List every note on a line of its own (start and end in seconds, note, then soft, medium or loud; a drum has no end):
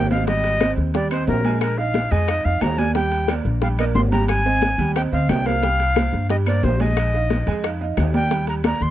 0.00 0.72 G#1 medium
0.11 0.24 C4 medium
0.11 0.25 C5 medium
0.11 0.25 D#5 medium
0.11 0.26 F5 medium
0.11 high bongo soft
0.11 high conga medium
0.11 high timbale medium
0.27 0.55 G3 medium
0.27 0.55 G4 medium
0.27 0.72 D#5 loud
0.27 0.55 G5 medium
0.27 high bongo medium
0.27 high conga soft
0.27 high timbale medium
0.44 high bongo soft
0.44 high conga soft
0.44 high timbale medium
0.60 0.88 C4 medium
0.60 0.89 C5 medium
0.60 0.89 D#5 medium
0.60 high bongo medium
0.60 high conga medium
0.60 high timbale medium
0.60 low timbale medium
0.60 claves medium
0.77 1.24 D#2 medium
0.77 high bongo soft
0.77 high conga soft
0.94 1.08 G3 medium
0.94 1.08 G4 medium
0.94 1.10 D5 medium
0.94 1.08 G5 medium
0.94 high bongo medium
0.94 high conga soft
0.94 high timbale medium
1.11 1.39 C4 medium
1.11 1.27 C5 medium
1.11 1.39 C5 medium
1.11 1.39 D#5 medium
1.11 high conga soft
1.11 high timbale medium
1.11 claves medium
1.27 2.06 A#1 medium
1.27 1.59 A#4 medium
1.27 high bongo soft
1.27 low bongo medium
1.27 high conga medium
1.27 low timbale medium
1.44 1.72 G#3 medium
1.44 1.72 G#4 medium
1.44 1.72 G#5 medium
1.44 high bongo soft
1.44 high conga medium
1.44 high timbale medium
1.61 1.79 A#4 medium
1.61 high bongo medium
1.61 high conga soft
1.61 high timbale medium
1.61 claves medium
1.78 2.06 D#4 medium
1.78 2.06 D#5 medium
1.78 2.13 F5 medium
1.78 2.06 F5 medium
1.78 high bongo soft
1.78 high conga soft
1.94 high bongo medium
1.94 high conga medium
1.94 high timbale medium
1.94 low timbale medium
2.11 2.43 F2 medium
2.11 2.25 G#3 medium
2.11 2.25 G#4 medium
2.11 2.46 D#5 medium
2.11 2.26 G#5 medium
2.11 high bongo soft
2.11 high conga soft
2.11 high timbale medium
2.28 2.42 D#4 medium
2.28 2.42 D#5 medium
2.28 2.42 F5 medium
2.28 high bongo medium
2.28 high conga soft
2.28 high timbale medium
2.28 claves medium
2.45 2.61 F2 medium
2.45 2.72 D#4 medium
2.45 2.73 D#5 medium
2.45 2.63 F5 medium
2.45 2.73 F5 medium
2.45 high conga soft
2.61 3.40 D#2 medium
2.61 2.80 A#5 medium
2.61 high bongo soft
2.61 low bongo medium
2.61 high conga medium
2.61 high timbale medium
2.61 low timbale medium
2.61 claves medium
2.78 2.92 A#3 medium
2.78 2.92 A#4 medium
2.78 2.93 D5 medium
2.78 2.94 G#5 medium
2.78 high bongo soft
2.78 high conga medium
2.78 high timbale medium
2.95 3.23 G3 medium
2.95 3.23 G4 medium
2.95 3.32 G5 medium
2.95 3.23 G5 medium
2.95 high bongo medium
2.95 high timbale medium
3.12 high bongo soft
3.12 high conga soft
3.12 high timbale medium
3.28 3.56 A#3 medium
3.28 3.56 A#4 medium
3.28 3.57 D5 medium
3.28 high bongo medium
3.28 high conga medium
3.28 high timbale medium
3.28 low timbale medium
3.28 claves medium
3.45 3.92 A#1 medium
3.45 high bongo soft
3.45 high conga soft
3.62 3.76 G3 medium
3.62 3.76 G4 medium
3.62 3.68 F5 medium
3.62 3.76 G5 medium
3.62 high bongo medium
3.62 high conga soft
3.62 high timbale medium
3.79 4.07 A#3 medium
3.79 4.07 A#4 medium
3.79 4.07 D5 medium
3.79 3.85 D#5 medium
3.79 high conga soft
3.79 high timbale medium
3.79 claves medium
3.95 4.73 G#1 medium
3.95 4.01 C6 medium
3.95 high bongo soft
3.95 low bongo medium
3.95 high conga medium
3.95 low timbale medium
4.12 4.40 G3 medium
4.12 4.40 G4 medium
4.12 4.40 G5 medium
4.12 4.27 A#5 medium
4.12 high bongo soft
4.12 high conga medium
4.12 high timbale medium
4.28 4.92 G#5 loud
4.28 high bongo medium
4.28 high conga soft
4.28 high timbale medium
4.28 claves medium
4.45 4.73 C4 medium
4.45 4.73 C5 medium
4.45 4.73 D#5 medium
4.45 high bongo soft
4.45 high conga soft
4.62 high bongo medium
4.62 high conga medium
4.62 high timbale medium
4.62 low timbale medium
4.78 5.10 D#2 medium
4.78 4.93 G3 medium
4.78 4.93 G4 medium
4.78 4.93 G5 medium
4.78 high bongo soft
4.78 high conga soft
4.78 high timbale medium
4.95 5.10 C4 medium
4.95 5.10 C5 medium
4.95 5.10 D#5 medium
4.95 5.02 G5 medium
4.95 high bongo medium
4.95 high conga soft
4.95 high timbale medium
4.95 claves medium
5.12 5.28 D2 medium
5.12 5.40 C4 medium
5.12 5.40 C5 medium
5.12 5.40 D#5 medium
5.12 5.31 F5 medium
5.12 high conga soft
5.29 6.07 C2 medium
5.29 5.48 G5 medium
5.29 high bongo soft
5.29 low bongo medium
5.29 high conga medium
5.29 high timbale medium
5.29 low timbale medium
5.29 claves medium
5.46 5.60 A#3 medium
5.46 5.60 A#4 medium
5.46 5.60 C5 medium
5.46 6.30 F5 loud
5.46 high bongo soft
5.46 high conga medium
5.46 high timbale medium
5.63 5.90 G3 medium
5.63 5.91 G4 medium
5.63 5.91 G5 medium
5.63 high bongo medium
5.63 high conga soft
5.63 high timbale medium
5.80 high bongo soft
5.80 high conga soft
5.80 high timbale medium
5.96 6.24 A#3 medium
5.96 6.24 A#4 medium
5.96 6.24 C5 medium
5.96 high bongo medium
5.96 high conga medium
5.96 high timbale medium
5.96 low timbale medium
5.96 claves medium
6.13 6.60 G2 medium
6.13 high bongo soft
6.13 high conga soft
6.29 6.43 G3 medium
6.29 6.44 G4 medium
6.29 6.36 D#5 medium
6.29 6.44 G5 medium
6.29 high bongo medium
6.29 high conga soft
6.29 high timbale medium
6.46 6.74 A#3 medium
6.46 6.74 A#4 medium
6.46 6.74 C5 medium
6.46 6.65 D5 medium
6.46 high conga soft
6.46 high timbale medium
6.46 claves medium
6.63 7.41 A#1 medium
6.63 6.82 C5 medium
6.63 high bongo soft
6.63 low bongo medium
6.63 high conga medium
6.63 low timbale medium
6.80 7.08 G#3 medium
6.80 7.08 G#4 medium
6.80 7.71 D#5 medium
6.80 7.08 G#5 medium
6.80 high bongo soft
6.80 high conga medium
6.80 high timbale medium
6.97 high bongo medium
6.97 high conga soft
6.97 high timbale medium
6.97 claves medium
7.14 7.41 D#4 medium
7.14 7.42 D#5 medium
7.14 7.42 F5 medium
7.14 high bongo soft
7.14 high conga soft
7.30 high bongo medium
7.30 high conga medium
7.30 high timbale medium
7.30 low timbale medium
7.47 7.94 F2 medium
7.47 7.61 G#3 medium
7.47 7.61 G#4 medium
7.47 7.61 G#5 medium
7.47 high bongo soft
7.47 high conga soft
7.47 high timbale medium
7.64 7.78 D#4 medium
7.64 7.78 D#5 medium
7.64 7.78 F5 medium
7.64 high bongo medium
7.64 high conga soft
7.64 high timbale medium
7.64 claves medium
7.81 8.08 D#4 medium
7.81 8.08 D#5 medium
7.81 8.08 F5 medium
7.81 high conga soft
7.97 8.75 D#2 medium
7.97 high bongo soft
7.97 low bongo medium
7.97 high conga medium
7.97 high timbale medium
7.97 low timbale medium
7.97 claves medium
8.14 8.28 A#3 medium
8.14 8.28 A#4 medium
8.14 8.28 D5 medium
8.14 8.46 G5 medium
8.14 high bongo soft
8.14 high conga medium
8.14 high timbale medium
8.31 8.58 G3 medium
8.31 8.58 G4 medium
8.31 8.58 G5 medium
8.31 high bongo medium
8.31 high conga soft
8.31 high timbale medium
8.31 maracas medium
8.47 8.55 A#5 medium
8.47 high bongo soft
8.47 high conga soft
8.47 high timbale medium
8.47 maracas soft
8.64 8.90 A#3 medium
8.64 8.90 A#4 medium
8.64 8.90 D5 medium
8.64 8.84 A#5 medium
8.64 high bongo medium
8.64 high conga medium
8.64 high timbale medium
8.64 low timbale medium
8.64 claves medium
8.64 maracas soft
8.81 8.90 D#2 medium
8.81 8.90 C6 loud
8.81 high bongo soft
8.81 high conga soft
8.81 maracas medium